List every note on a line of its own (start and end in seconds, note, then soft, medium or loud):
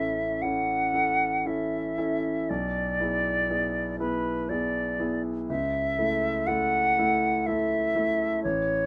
0.00 2.51 A1 soft
0.00 0.39 C#4 soft
0.00 0.39 E4 soft
0.00 0.39 A4 soft
0.00 0.43 E5 medium
0.42 0.90 C#4 soft
0.42 0.91 E4 soft
0.42 0.91 A4 soft
0.42 1.48 F#5 medium
0.94 1.42 C#4 soft
0.94 1.42 E4 soft
0.94 1.42 A4 soft
1.46 1.94 C#4 soft
1.46 1.94 E4 soft
1.46 1.94 A4 soft
1.46 2.51 E5 soft
1.98 2.45 C#4 soft
1.98 2.45 E4 soft
1.98 2.45 A4 soft
2.49 2.98 B1 soft
2.49 3.98 D5 medium
3.00 3.46 B3 soft
3.00 3.46 E4 soft
3.00 3.47 G#4 soft
3.50 3.96 B3 soft
3.50 3.96 E4 soft
3.50 3.96 G#4 soft
3.99 4.46 B3 soft
3.99 4.46 E4 soft
3.99 4.46 G#4 soft
3.99 4.50 B4 medium
4.49 4.96 B3 soft
4.49 4.96 E4 soft
4.49 4.96 G#4 soft
4.49 5.22 D5 medium
4.99 5.45 B3 soft
4.99 5.45 E4 soft
4.99 5.45 G#4 soft
5.49 5.97 C#2 soft
5.49 6.48 E5 medium
5.98 6.43 A3 soft
5.98 6.44 E4 soft
5.98 6.44 A4 soft
6.47 6.93 A3 soft
6.47 6.93 E4 soft
6.47 6.93 A4 soft
6.47 7.48 F#5 medium
6.99 7.43 A3 soft
6.99 7.43 E4 soft
6.99 7.43 A4 soft
7.46 7.91 A3 soft
7.46 7.91 E4 soft
7.46 7.92 A4 soft
7.46 8.43 E5 medium
7.95 8.39 A3 soft
7.95 8.40 E4 soft
7.95 8.40 A4 soft
8.43 8.86 A1 medium
8.43 8.86 C#5 medium